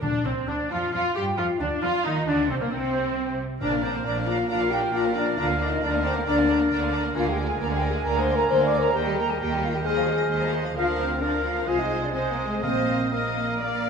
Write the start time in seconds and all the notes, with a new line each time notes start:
0.02 D2 A#2 D3 D4 D5
0.25 C2 C3 C4 C5
0.47 D2 D3 D4 D5
0.70 F2 F3 F4 F5
0.93 F2 F3 F4 F5
1.15 G2 G3 G4 G5
1.37 F2 F3 F4 F5
1.59 D2 D3 D4 D5
1.82 F2 F3 F4 F5
2.05 D#2 D#3 D#4 D#5
2.26 D2 D3 D4 D5
2.49 C2 C3 C4 C5
2.60 A#2 A#3 A#4
2.71 C2 C3 C4 C5
3.61 A#1 A#2 D4 A#4 D5 F5 A#5
3.72 A#3 A#4 F5
3.83 C4 D4 C5 D5 A#5
3.94 A#3 A#4 F5
4.05 A#1 A#2 D4 D5 A#5
4.15 A#3 A#4 F5
4.27 D4 F4 D5 F5 A#5
4.37 A#3 A#4 F5
4.48 A#1 A#2 D4 F4 D5 F5 A#5
4.60 A#3 A#4 F5
4.71 D4 G4 D5 G5 A#5
4.82 A#3 A#4 F5
4.92 A#1 A#2 D4 F4 D5 F5 A#5
5.04 A#3 A#4 F5
5.15 D4 D5 A#5
5.26 A#3 A#4 F5
5.37 D2 D3 D4 F4 D5 F5 A#5
5.48 A#3 A#4 F5
5.59 D4 D#4 D5 D#5 A#5
5.70 A#3 A#4 F5
5.81 D2 D3 D4 D5 A#5
5.92 A#3 A#4 F5
6.04 C4 D4 C5 D5 A#5
6.14 A#3 A#4 F5
6.26 D2 D3 D4 D5 A#5
6.36 A#3 A#4 F5
6.48 D4 D5 A#5
6.59 A#3 A#4 F5
6.70 D2 D3 D4 D5 A#5
6.81 A#3 A#4 F5
6.92 D4 D5 A#5
7.03 A#3 A#4 F5
7.14 D2 D3 A#3 F4 A#4 D5 F5 G#5
7.26 G#3 G#4 F5
7.31 G4 G5
7.37 A#3 A#4 D5
7.46 G#3 G#4 F5 G#5
7.59 D2 D3 A#3 A#4 D5 A#5
7.71 G#3 G#4 F5
7.75 G4 G5
7.81 A#3 A#4 D5
7.90 G#3 G#4 G#5
7.94 F5
8.04 D2 D3 A#3 A#4 D5 A#5
8.16 G#3 G#4 C5 F5
8.21 C6
8.27 A#3 A#4 D5
8.35 G#3 A#4 A#5
8.39 G#4 F5
8.49 D2 D3 A#3 A#4 C5 D5 C6
8.61 G#3 G#4 D5 F5
8.66 D6
8.72 A#3 A#4 D5
8.80 G#3 G#4 A#4 A#5
8.84 F5
8.93 D#2 D#3 A#3 G4 A#4 G5
9.05 G3 G4 D#5
9.16 A#3 A#4 G5 A#5
9.28 G3 G4 G#4 D#5 G#5
9.38 D#2 D#3 A#3 G4 A#4 G5
9.51 G3 G4 D#5
9.61 A#3 F4 A#4 F5 G5
9.73 G3 G4 D#5 G5
9.84 D#2 D#3 G#3 G#4 C5 D#5 F5 G#5
9.96 F3 D#5 F5
10.07 G#3 C5 D#5
10.18 F3 D#5 F5
10.30 D#2 D#3 G#3 C5 D#5
10.41 F3 D#5 F5
10.52 G#3 C5 D#5
10.64 F3 D#5 F5
10.75 D2 D3 F3 F4 A#4 F5
10.98 C4 C5
11.21 F3 D4 A#4 D5 F5
11.44 F4 F5
11.66 C2 C3 G#3 F4 C5 D#5 F5 G#5
11.79 D#4 D#5
12.03 D4 D5
12.13 G#3 C4 C5 D#5 G#5
12.30 A#3 A#4
12.46 G#3 G#4
12.62 A#1 A#2 A#3 C4 C5 D#5 F5
13.11 A#3 A#4 D#5 F5
13.60 A#3 D5 F5